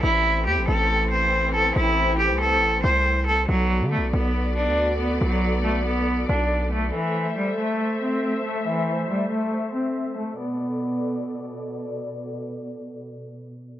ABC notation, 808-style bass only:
X:1
M:4/4
L:1/16
Q:1/4=139
K:Bphr
V:1 name="808-style bass" clef=bass
A,,,4 E,, A,,, A,,,8- A,,,2 | A,,,4- A,,, C,,2- C,,/2 A,,,2- A,,,/2 C,,6 | B,,,3 D,3/2 B,,,3/2 B,,,4- B,,, D,,4- D,, | B,,,8- B,,,2 B,,,6 |
z16 | z16 | z16 | z16 |]